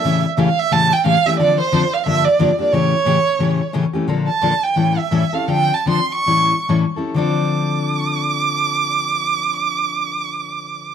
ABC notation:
X:1
M:4/4
L:1/16
Q:"Swing" 1/4=173
K:Aphr
V:1 name="Violin"
e2 z3/2 e/2 f2 e2 a2 g2 f2 e2 | d2 c4 f2 e2 d4 d2 | ^c12 z4 | [K:Dm] z2 a4 g4 e4 f2 |
g2 a2 c'2 ^c'6 z4 | d'16- | d'16 |]
V:2 name="Steel-string acoustic guitar"
[A,,^C,E,A,^CG]2 z2 [A,,C,E,A,CG] z3 [A,,C,E,A,CG]2 z2 [A,,C,E,A,CG] z [E,A,CG]2 | [D,F,CDA]2 z2 [D,F,CDA] z3 [G,,D,F,B,DG]2 z2 [G,,D,F,B,DG] z [F,B,DG]2 | [A,,^C,E,A,^CG]2 z2 [A,,C,E,A,CG] z3 [A,,C,E,A,CG]2 z2 [A,,C,E,A,CG] z [E,A,CG]2 | [K:Dm] [B,,D,F,B,DA]2 z2 [B,,D,F,B,DA] z3 [A,,E,G,^CEA]2 z2 [A,,E,G,CEA] z [G,CEA]2 |
[D,F,CDA]2 z2 [D,F,CDA] z3 [A,,E,G,^CEA]2 z2 [A,,E,G,CEA] z [G,CEA]2 | [D,F,CDA]16- | [D,F,CDA]16 |]